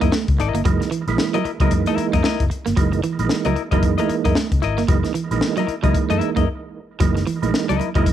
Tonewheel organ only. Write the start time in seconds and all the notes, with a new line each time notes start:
Already playing: E3 G#3 A#3 D#4
0.65 E3 G#3 A#3 D#4
1.08 E3 G#3 A#3 E4
1.61 E3 G#3 A#3 D#4
2.76 E3 G#3 A#3 D#4
3.19 E3 G#3 A#3 D#4
3.72 E3 G#3 A#3 D#4
4.88 E3 G#3 A#3 D#4
5.31 E3 G#3 A#3 D#4
5.83 E3 G#3 A#3 D#4
7.00 E3 G#3 A#3 D#4
7.42 E3 G#3 A#3 D#4
7.95 E3 G#3 A#3 D#4